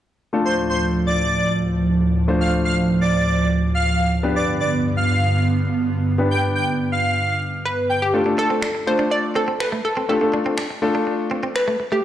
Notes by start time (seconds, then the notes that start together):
0.33 D2 A2 F3 A3 D4 F4 A4
0.45 C5
0.70 C5
1.07 D5
2.28 A3 D4 F4 C5
2.41 F5
2.65 F5
3.01 D5
3.75 F5
4.23 G2 D3 B3 D4 G4 B4
4.36 D5
4.60 D5
4.97 F5
6.18 B3 D4 G4 B4
6.31 G5
6.55 G5
6.92 F5
7.65 B4
7.89 G5
8.02 G4
8.13 A3 D4 F4 A4
8.26 A3 D4 F4 A4, muted clean electric guitar stroke
8.38 D4 A4
8.50 C4
8.62 D4, finger snap
8.75 muted clean electric guitar stroke
8.87 A3 D4 F4 A4 C5
8.99 D4
9.11 D5, muted clean electric guitar stroke
9.35 C4 A4
9.48 C4
9.60 B4, finger snap
9.72 A3
9.85 A4, muted clean electric guitar stroke
9.97 C4
10.09 A3 D4 F4 G4 A4
10.21 A3 D4 F4 A4, muted clean electric guitar stroke
10.34 D4
10.46 C4
10.58 D4, finger snap
10.70 muted clean electric guitar stroke
10.82 A3 D4 F4 A4
10.95 D4
11.07 muted clean electric guitar stroke
11.31 C4
11.43 C4
11.56 B4, finger snap
11.68 A3
11.80 muted clean electric guitar stroke
11.92 A3 G4